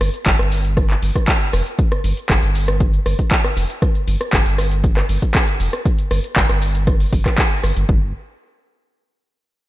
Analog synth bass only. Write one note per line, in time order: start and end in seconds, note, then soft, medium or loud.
0.01 0.09 G1 loud
0.26 0.34 G1 loud
0.39 0.95 G1 medium
1.02 1.11 G1 medium
1.53 1.62 F1 loud
2.04 2.12 G1 loud
2.30 2.38 G1 loud
2.43 2.99 G1 medium
3.06 3.14 G1 medium
3.57 3.65 F1 loud
4.08 4.16 G1 loud
4.33 4.41 G1 loud
4.46 5.02 G1 medium
5.09 5.17 G1 medium
5.60 5.68 F1 loud
6.11 6.19 G1 loud
6.36 6.45 G1 loud
6.50 7.05 G1 medium
7.13 7.21 G1 medium
7.64 7.72 G1 medium
7.77 7.84 G1 medium
7.89 8.13 G1 loud